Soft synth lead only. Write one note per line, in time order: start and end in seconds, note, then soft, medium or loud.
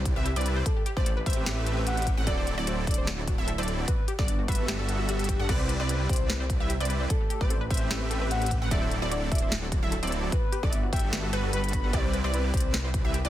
0.66 0.82 A4 medium
0.97 1.13 C5 loud
1.26 1.43 C5 medium
1.87 2.08 F#5 loud
2.27 2.49 D5 loud
2.67 2.79 C5 medium
2.87 3.09 D5 loud
3.88 4.04 B4 loud
4.19 4.35 D5 medium
4.48 4.65 B4 loud
5.09 5.50 G4 loud
5.49 5.71 C5 loud
5.89 6.01 B4 medium
6.09 6.31 C5 loud
7.10 7.42 A4 loud
7.41 7.57 C5 loud
7.71 7.87 C5 loud
8.31 8.53 F#5 loud
8.71 8.93 E5 loud
9.11 9.23 D5 medium
9.31 9.53 E5 loud
10.32 10.65 B4 loud
10.63 10.79 E5 loud
10.93 11.09 G5 medium
11.53 11.95 B5 loud
11.93 12.15 C5 loud
12.34 12.45 B4 medium
12.54 12.75 C5 loud